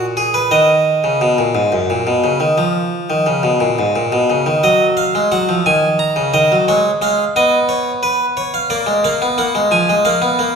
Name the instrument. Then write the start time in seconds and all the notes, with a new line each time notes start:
harpsichord
Already playing: A#2
0.17 G#4
0.34 B4
0.51 D#3 D#5
1.04 C#3
1.21 B2
1.38 A#2
1.55 G#2
1.72 F#2
1.90 A#2
2.07 B2
2.24 C#3
2.40 D#3
2.58 F3
3.10 D#3
3.26 C#3
3.43 B2
3.60 A#2
3.79 G#2
3.96 A#2
4.12 B2
4.30 C#3
4.46 D#3
4.63 F#3 D#5
4.97 F5
5.15 G#3
5.32 F#3 F#5
5.49 F3
5.66 D#3 G#5
5.99 A#5
6.16 C#3
6.34 D#3 D#5
6.52 F#3
6.68 G#3 C#5
7.02 G#3 F5
7.36 B3 D#5
7.69 C#5
8.03 B4
8.37 C#5
8.54 F5
8.70 A#3 D5
8.87 G#3
9.04 A#3 F5
9.22 B3
9.38 A#3 F#5
9.55 G#3
9.71 F3 G#5
9.89 G#3
10.05 A#3 F5
10.22 B3
10.39 A#3